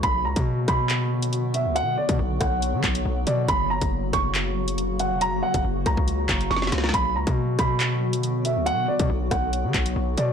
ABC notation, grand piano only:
X:1
M:4/4
L:1/8
Q:1/4=139
K:Bm
V:1 name="Grand piano"
b ^a z b4 e | f d z f4 d | b ^a z c'4 f | ^a f z a3 c' z |
b ^a z b4 e | f d z f4 d |]